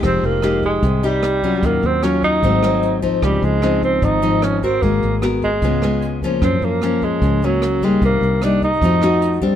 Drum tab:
HH |xxxxxxxx|xxxxxxxx|xxxxxxxx|xxxxxxxx|
SD |r-r---r-|--r--r--|r-r---r-|--r--r--|
BD |o--oo--o|o--oo--o|o--oo--o|o--oo--o|

HH |xxxxxxxx|xxxxxxxx|
SD |r-r---r-|--r--r--|
BD |o--oo--o|o--oo--o|